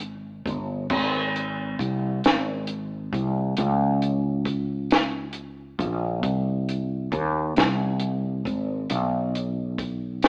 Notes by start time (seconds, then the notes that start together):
Already playing: G#1
0.46 G1, kick, closed hi-hat
0.90 G#1, kick, crash
1.36 closed hi-hat
1.79 C2, kick, closed hi-hat
2.24 G#1, snare, closed hi-hat
2.67 closed hi-hat
3.13 C2, kick, closed hi-hat
3.57 C#2, closed hi-hat
4.02 closed hi-hat
4.45 kick, closed hi-hat
4.91 snare, closed hi-hat
5.33 closed hi-hat
5.79 A#1, kick, closed hi-hat
6.23 C2, kick, closed hi-hat
6.69 closed hi-hat
7.12 D#2, kick, closed hi-hat
7.56 C2, snare, closed hi-hat
8.00 closed hi-hat
8.45 G#1, kick, closed hi-hat
8.90 B1, closed hi-hat
9.35 closed hi-hat
9.78 kick, closed hi-hat
10.23 snare, closed hi-hat